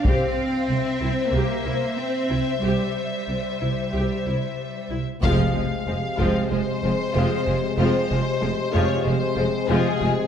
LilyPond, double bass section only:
\new Staff \with { instrumentName = "Double bass section" } { \clef bass \time 4/4 \key f \minor \tempo 4 = 94 c,8 r8 c,8 c,8 c,8 c,8 r8 c,8 | c,8 r8 c,8 c,8 c,8 c,8 r8 c,8 | f,,8 f,,8 f,,8 f,,8 f,,8 f,,8 f,,8 f,,8 | f,,8 f,,8 f,,8 f,,8 f,,8 f,,8 f,,8 f,,8 | }